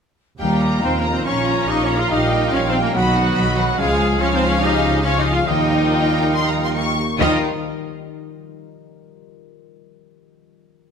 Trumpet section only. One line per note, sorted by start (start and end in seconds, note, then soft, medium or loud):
0.40 0.81 G4 medium
0.84 0.98 C5 medium
0.98 1.13 A#4 medium
1.13 1.27 C5 medium
1.26 1.69 C#5 medium
1.69 1.83 D#5 medium
1.84 1.98 C#5 medium
1.98 2.12 F5 medium
2.11 2.52 D#5 medium
2.53 2.67 C#5 medium
2.68 2.75 C5 medium
2.83 2.96 A#4 medium
2.96 3.77 F#4 medium
3.80 4.20 G#4 medium
4.20 4.34 C#5 medium
4.35 4.48 C5 medium
4.49 4.62 C#5 medium
4.62 5.04 D#5 medium
5.04 5.18 C#5 medium
5.20 5.33 D#5 medium
5.34 5.48 F5 medium
5.47 6.77 D#5 medium
7.21 7.39 D#5 medium